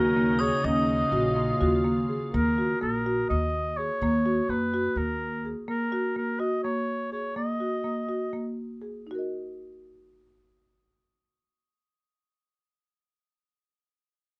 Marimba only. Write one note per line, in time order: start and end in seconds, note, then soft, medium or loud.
0.00 0.12 F#4 medium
0.17 0.36 A#3 medium
0.41 0.60 G#4 medium
0.65 1.04 C#4 medium
1.13 1.32 F#4 medium
1.36 1.56 A#3 medium
1.61 1.81 F#4 medium
1.85 2.05 A#3 medium
2.09 2.29 G#4 medium
2.34 2.54 A#3 medium
2.58 2.78 F#4 soft
2.81 3.01 A#3 medium
3.06 3.26 F#4 medium
3.30 3.69 A#3 medium
3.79 3.98 G#4 medium
4.02 4.22 A#3 medium
4.26 4.45 F#4 medium
4.50 4.69 A#3 medium
4.74 4.93 F#4 medium
4.97 5.36 A#3 medium
5.45 5.64 G#4 soft
5.68 5.88 A#3 medium
5.92 6.11 F#4 medium
6.16 6.35 A#3 medium
6.39 6.59 F#4 medium
6.64 7.03 A#3 medium
7.12 7.31 G#4 soft
7.36 7.55 A#3 medium
7.60 7.80 F#4 soft
7.84 8.04 A#3 soft
8.09 8.28 F#4 soft
8.33 8.73 A#3 soft
8.82 9.02 G#4 soft
9.07 13.43 D#4 soft
9.11 13.48 F#4 soft
9.11 13.52 A#4 soft
9.19 13.55 D#5 soft